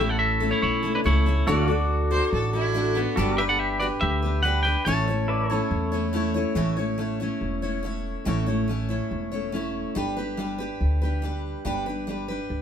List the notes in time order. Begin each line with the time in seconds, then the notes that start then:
Already playing: A1 E4 A4 C#5
0.00 A3 C#4 E4 A4
0.09 A4 F#5
0.19 A4 E5
0.40 A3 C#4 E4 A4
0.51 E4 C#5
0.62 B1 E4 C#5
0.83 A3 C#4 E4 A4
0.95 D4 B4
1.04 C#2 A3 C#4 E4 A4 C#5
1.26 A3 C#4 E4 A4
1.47 D2 D3 A3 D4 E4 F#4 A4 C#5 D5
1.68 D4 F#4 A4 D5
2.11 D4 F#4 A4 C5
2.29 A4 C#5
2.33 A1
2.53 D4 E4 F#4 A4
2.74 A3 D4 F#4 A4
2.95 B3 D4 F#4 A4
3.16 G1 G3 D4 F#4 G4 A4 B4 D5
3.36 G4 B4 E5
3.40 D4 G4 B4
3.49 A4 F#5
3.59 G4 E5
3.80 D4 F#4 G4 B4 D5
4.01 D2 G4 E5
4.23 D4 G4 B4
4.43 G3 D4 G4 B4 F#5
4.47 B4
4.63 B4 G5
4.67 D4 G4
4.85 A1 A2 E3 A3 C#4 E4 C#5 A5
5.08 A3 C#4 E4 C#5
5.28 E4 B4 D5
5.50 A3 C#4 E4 C#5
5.54 A4
5.71 E2
5.92 A3 C#4 E4 C#5
6.13 A3 C#4 E4 C#5
6.34 A3 C#4 E4 C#5
6.55 A1 A2 E3 A3 C#4 E4 C#5
6.77 A3 C#4 E4 C#5
6.98 A3 C#4 E4 C#5
7.20 A3 C#4 E4 C#5
7.41 E1
7.62 A3 C#4 E4 C#5
7.83 A3 C#4 E4 C#5
8.25 A1 A2 E3 A3 C#4 E4 C#5
8.46 A3 C#4 E4 C#5
8.68 A3 C#4 E4 C#5
8.89 A3 C#4 E4 C#5
9.11 E1
9.32 A3 C#4 E4 C#5
9.52 A3 C#4 E4 C#5
9.95 G1 G3 D4 G4 B4
10.17 D4 G4 B4
10.37 G3 D4 G4 B4
10.58 D4 G4 B4
10.81 D2
11.02 D4 G4 B4
11.22 G3 D4 G4 B4
11.65 G1 G3 D4 G4 B4
11.86 D4 G4 B4
12.07 G3 D4 G4 B4
12.28 D4 G4 B4
12.50 D2